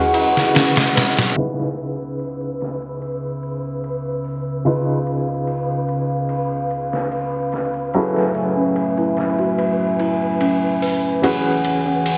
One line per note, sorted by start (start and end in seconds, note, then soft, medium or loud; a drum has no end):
0.00 1.39 G#3 loud
0.00 0.55 C#4 medium
0.00 1.39 C#4 medium
0.00 0.14 E4 medium
0.00 1.33 E4 medium
0.00 1.39 F#4 loud
0.00 1.40 F#4 medium
0.00 1.34 G#4 medium
0.00 0.95 B4 medium
0.00 1.35 B4 medium
0.00 1.39 B4 medium
0.00 1.34 F#5 medium
0.00 1.34 C#6 medium
0.14 0.34 E4 medium
0.14 ride medium
0.14 tabla na medium
0.35 snare soft
0.35 tabla na soft
0.55 0.94 C#4 medium
0.55 snare loud
0.55 ride medium
0.55 tabla na soft
0.76 snare loud
0.76 ride medium
0.76 tabla na soft
0.95 1.16 B4 medium
0.95 snare loud
0.95 ride medium
0.95 tabla na medium
1.17 snare loud
1.17 ride medium
1.17 tabla na soft
1.36 4.61 C#3 medium
1.36 7.91 C#3 medium
1.36 12.18 C#4 medium
1.36 4.61 D#4 medium
1.36 4.62 E4 medium
1.36 12.18 B4 medium
1.36 11.19 B4 medium
1.36 4.62 B4 medium
1.36 4.62 E6 medium
1.36 ride medium
1.60 snare soft
1.78 ride medium
2.19 ride medium
2.41 ride soft
2.61 snare soft
2.61 ride medium
2.82 ride soft
3.02 ride medium
3.43 ride medium
3.84 ride medium
4.25 open hi-hat medium
4.65 7.90 C#3 medium
4.65 7.90 D#4 medium
4.65 7.90 F4 medium
4.65 7.91 B4 medium
4.65 7.91 F5 medium
4.65 ride medium
5.07 ride medium
5.47 ride medium
5.88 ride medium
6.29 ride medium
6.70 ride medium
6.93 snare soft
7.11 ride medium
7.52 snare soft
7.52 ride medium
7.74 ride soft
7.94 11.20 F#3 medium
7.94 11.19 F#3 medium
7.94 11.20 A3 medium
7.94 11.19 C#4 medium
7.94 11.19 E4 medium
7.94 11.20 G#4 medium
7.94 11.20 A4 medium
7.94 8.55 B4 medium
7.94 11.20 B4 medium
7.94 11.20 E5 medium
7.94 12.18 G#5 medium
7.94 ride medium
8.16 snare soft
8.35 ride medium
8.57 8.76 C#4 medium
8.76 ride medium
8.97 9.37 E4 medium
8.97 ride soft
9.17 snare soft
9.17 ride medium
9.38 9.58 F#4 medium
9.38 ride soft
9.58 ride medium
10.00 10.20 E4 medium
10.00 ride medium
10.41 10.80 C#4 medium
10.41 ride medium
10.82 11.03 B4 medium
10.82 open hi-hat medium
11.22 12.18 E3 medium
11.22 12.18 C#4 medium
11.22 12.18 F#4 medium
11.22 12.18 G#4 medium
11.22 11.84 B4 medium
11.22 12.18 B4 medium
11.22 12.18 F#5 medium
11.22 ride medium
11.65 ride medium
11.86 12.05 C#4 medium
12.06 ride medium